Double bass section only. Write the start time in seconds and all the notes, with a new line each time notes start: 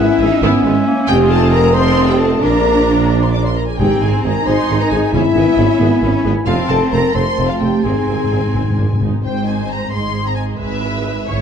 0.20 G#1
0.41 G#1
0.64 G#1
1.08 F1
2.42 A#1
3.78 G#1
4.02 G#1
4.24 G#1
4.47 G#1
4.69 G#1
4.91 G#1
5.13 G#1
5.35 G#1
5.57 G#1
5.80 G#1
6.02 G#1
6.24 G#1
6.46 F1
6.69 F1
6.93 F1
7.15 F1
7.38 F1
7.62 F1
7.84 G#1
8.08 G#1
8.31 G#1
8.55 G#1
8.78 G#1
9.01 G#1
9.23 G#1
9.92 G#1
10.60 G#1
11.27 G#1